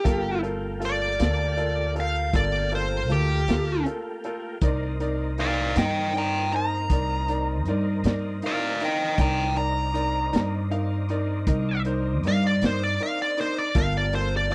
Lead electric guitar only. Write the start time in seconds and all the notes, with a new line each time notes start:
Already playing: G4
0.85 D5
2.00 F5
2.36 D5
2.75 C5
3.12 G4
5.40 D5 F5
5.78 D#5 G5
6.17 G5 A#5
6.56 A#5
8.46 D5 F5
8.84 D#5 G5
9.20 G5 A#5
9.57 A#5
12.28 F5
12.47 D5
12.66 C5
12.84 D5
13.03 F5
13.22 D5
13.41 C5
13.58 D5
13.78 F5
13.97 D5
14.15 C5
14.37 D5